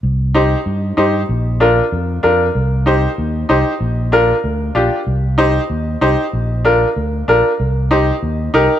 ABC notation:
X:1
M:4/4
L:1/8
Q:1/4=190
K:Cm
V:1 name="Upright piano"
z2 [EGc] z3 [EGc] z | z2 [DFB] z3 [DFB] z | z2 [EGc] z3 [EGc] z | z2 [DFB] z3 [DFG] z |
z2 [EGc] z3 [EGc] z | z2 [DFB] z3 [DFB] z | z2 [EGc] z3 [EGB] z |]
V:2 name="Fingered electric bass" clef=bass
C,,4 G,,2 G,,2 | B,,,4 F,,2 F,,2 | C,,4 E,,2 C,, z | B,,,4 D,,2 B,,, z |
C,,4 E,,2 C,, z | B,,,4 D,,2 B,,, z | C,,4 E,,2 C,, z |]